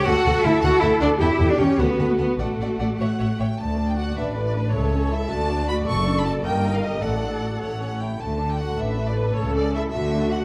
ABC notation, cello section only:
X:1
M:6/8
L:1/16
Q:3/8=104
K:D
V:1 name="Cello section" clef=bass
F4 E2 F2 E2 D2 | E3 D C2 B,3 A, B,2 | A,8- A,2 z2 | D,,6 A,,6 |
C,,6 D,,6 | F,,6 G,,6 | A,,6 A,,6 | D,6 A,,6 |
C,6 D,6 |]